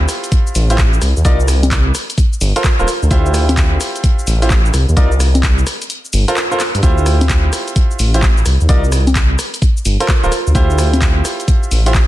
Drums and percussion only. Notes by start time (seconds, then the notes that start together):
0.09 cross-stick, open hi-hat, cabasa
0.24 closed hi-hat, cabasa
0.32 kick, closed hi-hat, cabasa
0.47 cabasa
0.55 open hi-hat, cabasa
0.70 closed hi-hat, cabasa
0.78 kick, clap, cabasa
0.93 cabasa
1.02 cross-stick, open hi-hat, cabasa
1.17 cabasa
1.25 kick, closed hi-hat, cabasa
1.40 cabasa
1.48 cross-stick, open hi-hat, cabasa
1.63 closed hi-hat, high conga, cabasa
1.71 kick, clap, closed hi-hat, cabasa
1.95 cross-stick, open hi-hat, cabasa
2.10 closed hi-hat, cabasa
2.18 kick, closed hi-hat, cabasa
2.33 cabasa
2.41 open hi-hat, cabasa
2.56 closed hi-hat, cabasa
2.64 kick, clap, cabasa
2.79 cabasa
2.88 cross-stick, open hi-hat, cabasa
3.03 cabasa
3.11 kick, closed hi-hat, cabasa
3.26 cabasa
3.34 cross-stick, open hi-hat, cabasa
3.49 closed hi-hat, high conga, cabasa
3.57 kick, clap, closed hi-hat, cabasa
3.81 cross-stick, open hi-hat, cabasa
3.96 closed hi-hat, cabasa
4.04 kick, closed hi-hat, cabasa
4.19 cabasa
4.27 open hi-hat, cabasa
4.42 closed hi-hat, cabasa
4.50 kick, clap, cabasa
4.66 cabasa
4.74 cross-stick, open hi-hat, cabasa
4.89 cabasa
4.97 kick, closed hi-hat, cabasa
5.12 cabasa
5.20 cross-stick, open hi-hat, cabasa
5.35 closed hi-hat, high conga, cabasa
5.43 kick, clap, closed hi-hat, cabasa
5.58 cabasa
5.67 cross-stick, open hi-hat, cabasa
5.82 closed hi-hat, cabasa
5.90 closed hi-hat, cabasa
6.05 cabasa
6.13 open hi-hat, cabasa
6.28 closed hi-hat, cabasa
6.37 clap, cabasa
6.52 cabasa
6.60 cross-stick, clap, open hi-hat, cabasa
6.75 closed hi-hat, cabasa
6.83 kick, closed hi-hat, cabasa
6.98 cabasa
7.06 cross-stick, open hi-hat, cabasa
7.21 closed hi-hat, high conga, cabasa
7.29 kick, clap, closed hi-hat, cabasa
7.53 cross-stick, open hi-hat, cabasa
7.68 closed hi-hat, cabasa
7.76 kick, closed hi-hat, cabasa
7.91 cabasa
7.99 open hi-hat, cabasa
8.14 closed hi-hat, cabasa
8.22 kick, clap, cabasa
8.37 cabasa
8.46 cross-stick, open hi-hat, cabasa
8.61 cabasa
8.69 kick, closed hi-hat, cabasa
8.84 cabasa
8.92 cross-stick, open hi-hat, cabasa
9.07 closed hi-hat, high conga, cabasa
9.15 kick, clap, closed hi-hat, cabasa
9.39 cross-stick, open hi-hat, cabasa
9.54 closed hi-hat, cabasa
9.62 kick, closed hi-hat, cabasa
9.77 cabasa
9.85 open hi-hat, cabasa
10.00 closed hi-hat, cabasa
10.08 kick, clap, cabasa
10.24 cabasa
10.32 cross-stick, open hi-hat, cabasa
10.47 cabasa
10.55 kick, closed hi-hat, cabasa
10.70 cabasa
10.78 cross-stick, open hi-hat, cabasa
10.94 closed hi-hat, high conga, cabasa
11.01 kick, clap, closed hi-hat, cabasa
11.25 cross-stick, open hi-hat, cabasa
11.40 closed hi-hat, cabasa
11.48 kick, closed hi-hat, cabasa
11.63 cabasa
11.71 open hi-hat, cabasa
11.86 closed hi-hat, cabasa
11.94 kick, clap, cabasa